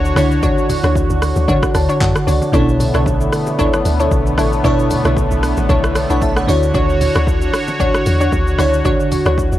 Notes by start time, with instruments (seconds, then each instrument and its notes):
Already playing: log drum bass D2, fm electric piano D3 D4 E4 F#4 C#5, analog synth pad D3 F#4 C#5
0.05 shaker
0.15 log drum bass C#2, fm electric piano D3 D4 E4 F#4 C#5, synth pluck D4 F#4 C#5, cross-stick, open hi-hat, shaker
0.31 shaker
0.43 synth pluck D4 F#4 C#5, kick, low conga, shaker
0.58 shaker
0.69 open hi-hat, high bongo, low bongo, low conga, shaker
0.83 log drum bass D2, synth pluck D4 F#4 C#5, cross-stick, shaker
0.95 kick, high bongo, shaker
1.10 log drum bass D2, shaker
1.22 cross-stick, open hi-hat, shaker
1.36 log drum bass D2, high bongo, low bongo, shaker
1.48 log drum bass D3, synth pluck D4 F#4 C#5, kick, low conga, shaker
1.63 kick, cross-stick, shaker
1.75 log drum bass D2, fm electric piano A5, cross-stick, open hi-hat, low bongo, shaker
1.89 synth pluck D4 F#4 C#5, shaker
2.01 log drum bass F#2, fm electric piano F#5, kick, clap, high bongo, shaker
2.16 cross-stick, shaker
2.27 log drum bass C#2, synth pluck D4 F#4 C#5, fm electric piano D5, open hi-hat, shaker
2.42 low bongo, shaker
2.52 log drum bass B1, fm electric piano B2 B3 C#4 E4 A4 C#5, analog synth pad A3 B3, synth pluck D4 E4 A4 C#5, kick, low conga, shaker
2.60 fm electric piano D4
2.69 shaker
2.80 open hi-hat, high bongo, low bongo, low conga, shaker
2.94 log drum bass B1, synth pluck D4 E4 A4 C#5, cross-stick, shaker
3.06 kick, high bongo, shaker
3.21 shaker
3.32 cross-stick, open hi-hat, shaker
3.46 high bongo, low bongo, shaker
3.59 synth pluck D4 E4 A4 C#5, kick, low conga, shaker
3.74 cross-stick, shaker
3.85 log drum bass D2, open hi-hat, low bongo, shaker
3.99 synth pluck D4 E4 A4 C#5, shaker
4.11 log drum bass B1, kick, high bongo, shaker
4.26 shaker
4.38 log drum bass A1, synth pluck D4 E4 A4 C#5, cross-stick, open hi-hat, shaker
4.52 shaker
4.63 fm electric piano B2 B3 D4 E4 A4 C#5, synth pluck D4 E4 A4 C#5, kick, low conga, shaker
4.79 shaker
4.90 open hi-hat, high bongo, low bongo, low conga, shaker
5.05 log drum bass B1, synth pluck D4 E4 A4 C#5, cross-stick, shaker
5.16 kick, high bongo, shaker
5.31 log drum bass B1, shaker
5.43 cross-stick, open hi-hat, shaker
5.57 log drum bass A1, high bongo, low bongo, shaker
5.69 log drum bass B1, synth pluck D4 E4 A4 C#5, kick, low conga, shaker
5.84 cross-stick, shaker
5.95 cross-stick, open hi-hat, low bongo, shaker
6.10 log drum bass B1, synth pluck D4 E4 A4 C#5, fm electric piano F#5 B5, shaker
6.22 fm electric piano E5 A5, kick, high bongo, shaker
6.37 fm electric piano C#5 F#5, cross-stick, shaker
6.47 log drum bass D2, fm electric piano D3 D4 E4 F#4 C#5, synth pluck D4 F#4 C#5, analog synth pad F#4 C#5, open hi-hat, shaker
6.63 shaker
6.74 log drum bass D2, synth pluck D4 F#4 C#5, kick, low conga, shaker
6.89 shaker
7.01 open hi-hat, high bongo, low bongo, low conga, shaker
7.15 log drum bass D2, synth pluck D4 F#4 C#5, cross-stick, shaker
7.27 kick, high bongo, shaker
7.41 shaker
7.54 cross-stick, open hi-hat, shaker
7.67 high bongo, low bongo, shaker
7.80 synth pluck D4 F#4 C#5, kick, low conga, shaker
7.94 cross-stick, shaker
8.06 log drum bass E2, open hi-hat, low bongo, shaker
8.20 synth pluck D4 F#4 C#5, shaker
8.32 log drum bass D2, kick, high bongo, shaker
8.47 shaker
8.57 log drum bass C#2, fm electric piano D3 D4 E4 F#4 C#5, synth pluck D4 F#4 C#5, cross-stick, open hi-hat, shaker
8.73 shaker
8.85 synth pluck D4 F#4 C#5, kick, low conga, shaker
9.00 shaker
9.12 open hi-hat, high bongo, low bongo, low conga, shaker
9.25 log drum bass D2, synth pluck D4 F#4 C#5, cross-stick, shaker
9.37 kick, high bongo, shaker
9.52 log drum bass D2, shaker